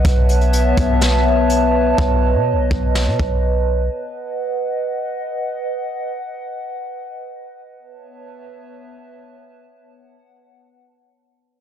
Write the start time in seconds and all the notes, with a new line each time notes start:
Already playing: B4
0.05 B1 B3 C#5 E5 A5, kick, closed hi-hat
0.29 closed hi-hat
0.41 closed hi-hat
0.53 closed hi-hat
0.77 B1, kick, closed hi-hat
1.01 snare, closed hi-hat
1.50 closed hi-hat
1.98 B1 D#5, kick
2.35 B2
2.53 B1
2.71 B1, kick
2.95 snare
3.07 B2
3.20 B1, kick
3.92 D#5 F#5
7.79 B3 B4 C#5 E5 A5
9.73 F#5